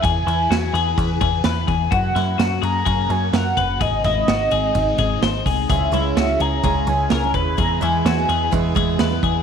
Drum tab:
RD |xxxxxxxx|xxxxxxxx|xxxxxxxx|xxxxxxxx|
HH |--------|--------|-------o|p-------|
SD |--o---o-|-oo---o-|-oo---o-|--o---o-|
BD |o---oo-o|o---o--o|oo--oo-o|o---o--o|

RD |xxxxxxxx|
HH |--------|
SD |--o---o-|
BD |o---oo-o|